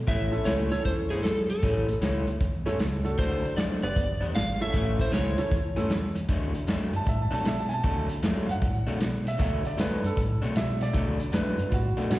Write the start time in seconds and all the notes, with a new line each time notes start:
0.07 A1 A2 E3 A3 C#4 E5, kick, closed hi-hat
0.32 A3 C#4 E4 A4, muted clean electric guitar stroke, closed hi-hat
0.45 C#2 A2 E3 A3 C#4 C#5, snare, closed hi-hat
0.70 D2 A3 C#4 E4 A4 C#5, muted clean electric guitar stroke, snare, closed hi-hat
0.85 E2 C5, muted clean electric guitar stroke, kick, snare, closed hi-hat
1.10 G2 A2 E3 A3 C#4 G#4, closed hi-hat
1.24 F#2 A4, muted clean electric guitar stroke, snare, closed hi-hat
1.50 A4, muted clean electric guitar stroke, closed hi-hat
1.62 A1 A2 E3 A3 C#4, kick, closed hi-hat
1.88 muted clean electric guitar stroke, closed hi-hat
2.01 C#2 A2 E3 A3 C#4, snare, closed hi-hat
2.27 D2, muted clean electric guitar stroke, closed hi-hat
2.40 E2, muted clean electric guitar stroke, kick, closed hi-hat
2.66 G2 A2 E3 A3 C#4 E4 A4, closed hi-hat
2.79 C#2, muted clean electric guitar stroke, snare, closed hi-hat
3.04 A3 D4 F#4 A4, muted clean electric guitar stroke, closed hi-hat
3.18 D2 D3 F#3 A3 D4 C5, kick, closed hi-hat
3.44 muted clean electric guitar stroke, closed hi-hat
3.57 F#2 D3 F#3 A3 D4 D5, snare, closed hi-hat
3.82 F#1 B3 D4 G4 B4 D5, muted clean electric guitar stroke, closed hi-hat
3.95 G1, muted clean electric guitar stroke, kick, closed hi-hat
4.21 E2 G2 G3 B3 D4, closed hi-hat
4.34 G#1 F5, muted clean electric guitar stroke, snare, closed hi-hat
4.60 A3 C#4 E4 A4 E5, muted clean electric guitar stroke, closed hi-hat
4.73 A1 A2 E3 A3 C#4, kick, closed hi-hat
4.99 C5, muted clean electric guitar stroke, kick, snare, closed hi-hat
5.11 C#2 A2 E3 A3 C#4 C#5, snare, closed hi-hat
5.37 D2 A3 C#4 E4 A4, muted clean electric guitar stroke, closed hi-hat
5.50 E2, muted clean electric guitar stroke, kick, closed hi-hat
5.76 G2 A2 E3 A3 C#4 E4 A4, closed hi-hat
5.89 E2, muted clean electric guitar stroke, snare, closed hi-hat
6.15 muted clean electric guitar stroke, closed hi-hat
6.29 D2 D3 F#3 A3 D4, kick, closed hi-hat
6.54 muted clean electric guitar stroke, closed hi-hat
6.67 F#2 D3 F#3 A3 D4, snare, closed hi-hat
6.93 G2 A5, muted clean electric guitar stroke, closed hi-hat
7.06 A2 E5, muted clean electric guitar stroke, kick, closed hi-hat
7.22 A5
7.31 B2 D3 F#3 A3 D4 A5, closed hi-hat
7.44 B2 E5, muted clean electric guitar stroke, snare, closed hi-hat
7.60 A5
7.69 G#5, muted clean electric guitar stroke, closed hi-hat
7.74 A5
7.83 D2 D3 F#3 A3 D4, kick, closed hi-hat
8.09 muted clean electric guitar stroke, closed hi-hat
8.23 F#2 D3 F#3 A3 D4, snare, closed hi-hat
8.47 G2 F5, muted clean electric guitar stroke, closed hi-hat
8.51 F#5
8.62 A2, muted clean electric guitar stroke, kick, closed hi-hat
8.87 B2 D3 F#3 A3 D4, closed hi-hat
9.00 B2, muted clean electric guitar stroke, snare, closed hi-hat
9.25 E5, muted clean electric guitar stroke, closed hi-hat
9.38 D2 D3 F#3 A3 D4 E5, kick, closed hi-hat
9.64 D5, muted clean electric guitar stroke, closed hi-hat
9.77 F#2 D3 F#3 A3 D4 B4, snare, closed hi-hat
10.03 G2 A4, muted clean electric guitar stroke, closed hi-hat
10.17 A2, muted clean electric guitar stroke, kick, closed hi-hat
10.42 B2 D3 F#3 A3 D4, closed hi-hat
10.55 B2 E5, muted clean electric guitar stroke, snare, closed hi-hat
10.81 D5, muted clean electric guitar stroke, snare, closed hi-hat
10.93 D2 D3 F#3 A3 D4, kick, closed hi-hat
11.19 muted clean electric guitar stroke, closed hi-hat
11.32 F#2 D3 F#3 A3 D4 B4, snare, closed hi-hat
11.58 G2, muted clean electric guitar stroke, closed hi-hat
11.69 A2 F4, muted clean electric guitar stroke, kick, closed hi-hat
11.74 F#4
11.97 B2 D3 F#3 A3 D4, closed hi-hat
12.10 B2 D4 F#4, muted clean electric guitar stroke, snare, closed hi-hat